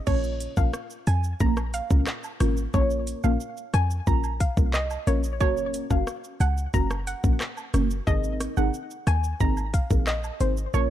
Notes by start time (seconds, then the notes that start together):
0.07 A#1 A#3 C#4 F4 A#4 C#5, kick, crash, high woodblock, shaker
0.24 shaker
0.40 closed hi-hat, cabasa, shaker
0.57 A#1 A#3 C#4 F4 A#4 F5, kick, high woodblock, shaker
0.73 cross-stick, shaker
0.90 shaker
1.07 F2 G#5, closed hi-hat, cabasa, high woodblock, shaker
1.24 shaker
1.40 A#1 A#3 C#4 F4 A#4 A#5, kick, shaker
1.57 cross-stick, high woodblock, shaker
1.74 F5, closed hi-hat, cabasa, shaker
1.90 C#2 A#3 C#4 F4 A#4, kick, shaker
2.07 cross-stick, clap, shaker
2.24 high woodblock, shaker
2.40 G#1 A#3 C#4 F4 A#4, cross-stick, closed hi-hat, cabasa, shaker
2.57 shaker
2.74 A#1 A#3 C#4 F4 A#4 C#5, kick, high woodblock, shaker
2.90 shaker
3.07 closed hi-hat, cabasa, shaker
3.24 A#1 A#3 C#4 F4 A#4 F5, high woodblock, shaker
3.40 shaker
3.57 shaker
3.74 F2 G#5, cross-stick, closed hi-hat, cabasa, high woodblock, shaker
3.91 shaker
4.07 A#1 A#3 C#4 F4 A#4 A#5, kick, shaker
4.24 high woodblock, shaker
4.40 F5, kick, closed hi-hat, cabasa, shaker
4.57 C2 A#3 C#4 F4 A#4, kick, shaker
4.74 D#5, cross-stick, clap, shaker
4.91 high woodblock, shaker
5.07 A#1 A#3 C#4 F4 A#4 C#5, closed hi-hat, cabasa, shaker
5.24 shaker
5.40 F#1 A#3 C#4 F#4 A#4 C#5, kick, high woodblock, shaker
5.57 shaker
5.74 closed hi-hat, cabasa, shaker
5.90 F#1 A#3 C#4 F#4 A#4 F5, kick, high woodblock, shaker
6.07 cross-stick, shaker
6.24 shaker
6.40 C#2 F#5, closed hi-hat, cabasa, high woodblock, shaker
6.57 shaker
6.73 F#1 A#3 C#4 F#4 A#4 A#5, kick, shaker
6.90 cross-stick, high woodblock, shaker
7.07 F#5, closed hi-hat, cabasa, shaker
7.24 A#1 A#3 C#4 F#4 A#4, kick, shaker
7.41 cross-stick, clap, shaker
7.57 high woodblock, shaker
7.73 F#1 A#3 C#4 F#4 A#4, cross-stick, closed hi-hat, cabasa, shaker
7.91 shaker
8.07 G#1 C4 D#4 G#4 A#4 D#5, kick, high woodblock, shaker
8.24 shaker
8.40 cross-stick, closed hi-hat, cabasa, shaker
8.57 G#1 C4 D#4 G#4 A#4 F#5, high woodblock, shaker
8.74 shaker
8.91 shaker
9.07 D#2 G#5, cross-stick, closed hi-hat, cabasa, high woodblock, shaker
9.24 shaker
9.40 G#1 C4 D#4 G#4 A#4 A#5, kick, shaker
9.57 high woodblock, shaker
9.74 F5, kick, closed hi-hat, cabasa, shaker
9.90 A#1 C4 D#4 G#4 A#4, kick, shaker
10.07 D#5, cross-stick, clap, shaker
10.24 high woodblock, shaker
10.40 G#1 C4 D#4 G#4 A#4 C5, closed hi-hat, cabasa, shaker
10.57 shaker
10.73 A#1 A#3 C#4 F4 A#4 C#5, high woodblock, shaker